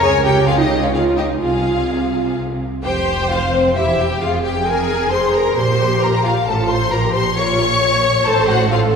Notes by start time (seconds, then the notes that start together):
0.01 C#2 C#3 G#4 C#5 G#5
0.23 G4 A#4 G5
0.47 F4 G#4 F5
0.59 D#4 G4 D#5
0.82 C#4 F4 C#5
0.93 F4 G#4 F5
1.17 D#4 G4 D#5
1.41 C2 C3 F4 G#4 F5
2.83 F1 F2 G4 C5 G5
3.30 F4 F5
3.52 C4 C5
3.76 E1 E2 E4 G4 E5
3.98 G4 G5
4.20 F1 F2 F4 G#4 F5
4.43 G4 G5
4.66 G#4 A#4 G#5
5.12 G#4 C5 C6
5.34 A#4 A#5
5.57 A#1 A#2 G4 C5 C6
6.01 A#4 A#5
6.24 F4 F5
6.46 A1 A2 F4 A4 A5
6.69 C5 C6
6.91 A#1 A#2 G4 A#4 A#5
7.13 C5 C6
7.35 F4 C#5 C#6
7.81 C#5
8.25 A1 A2 A4 C5 A5
8.48 F#4 F#5
8.70 F4 A4 F5